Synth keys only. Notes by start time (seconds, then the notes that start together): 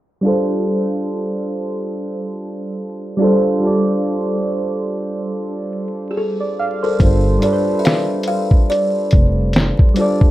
0.21 G3 D4 F4
0.26 A4 C5
3.17 G3 D4 F4
3.22 A4 C5
3.60 G3 D4 F4
3.65 A4 D5
6.40 D5
6.59 D5 F5
6.83 A4 C5
6.99 G3 D4 F4
7.04 A4 C5
7.39 G3 D4 F4
7.44 A4 B4
7.53 C5
9.94 G3 D4 F4
10.00 A4 D5